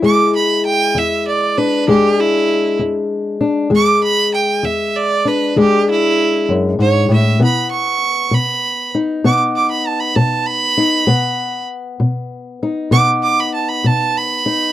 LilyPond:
<<
  \new Staff \with { instrumentName = "Fiddle" } { \time 12/8 \key e \mixolydian \tempo 4. = 65 d'''8 b''8 g''8 e''8 d''8 b'8 g'8 e'4 r4. | d'''8 b''8 g''8 e''8 d''8 b'8 g'8 e'4 r8 cis''8 e''8 | b''8 cis'''4 b''4 r8 d'''16 r16 d'''16 b''16 a''16 b''16 a''8 b''4~ | b''4 r2 d'''16 r16 d'''16 b''16 a''16 b''16 a''8 b''4 | }
  \new Staff \with { instrumentName = "Steel-string acoustic guitar" } { \clef bass \time 12/8 \key e \mixolydian << { gis2~ gis8 d'8 gis2~ gis8 d'8 | gis2~ gis8 d'8 gis2. | b2~ b8 dis'8 b2~ b8 dis'8 | b2~ b8 dis'8 b2~ b8 dis'8 | } \\ { e,4 r8 e,4 r8 e,4 r8 e,4 r8 | e,4 r8 e,4 r8 e,4 r8 fis,8 gis,8 a,8 | b,4 r8 b,4 r8 b,4 r8 b,4 r8 | b,4 r8 b,4 r8 b,4 r8 b,4 r8 | } >> }
>>